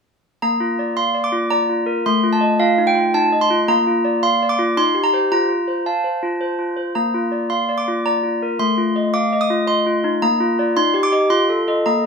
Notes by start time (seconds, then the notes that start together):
0.42 A#3 A#5
0.60 F4
0.79 D5
0.97 F5 C6
1.14 D5
1.24 D6
1.32 F4
1.51 D5 A#5
1.69 F4
1.86 A#4
2.06 A3 C6
2.23 F4
2.33 A5
2.41 D#5
2.60 F4 F5
2.78 D#4
2.87 G5
2.95 F4
3.14 D#4 A5
3.32 D#5
3.41 C6
3.51 F4
3.68 A#3 A#5
3.87 F4
4.05 D5
4.23 F5 C6
4.43 D5
4.49 D6
4.59 F4
4.77 D#4 C6
4.95 G4
5.04 A#5
5.13 G4 C5
5.32 F4 A#5
5.49 F4
5.68 C5
5.86 F5 A5
6.04 C5
6.23 F4
6.41 C5
6.59 F4
6.77 C5
6.95 A#3 A#5
7.14 F4
7.32 D5
7.50 F5 C6
7.69 D5
7.78 D6
7.88 F4
8.06 D5 A#5
8.23 F4
8.43 A#4
8.59 A3 C6
8.78 F4
8.96 D#5
9.14 F5 D6
9.33 D#5
9.41 D#6
9.50 F4
9.67 D#5 C6
9.86 F4
10.04 D#4
10.22 A#3 A#5
10.40 F4
10.59 F4 D5
10.77 D#4 C6
10.94 G4
11.03 D6
11.12 G4 D#5
11.30 F4 C6
11.49 A4
11.68 A4 D#5
11.86 A#3 A#5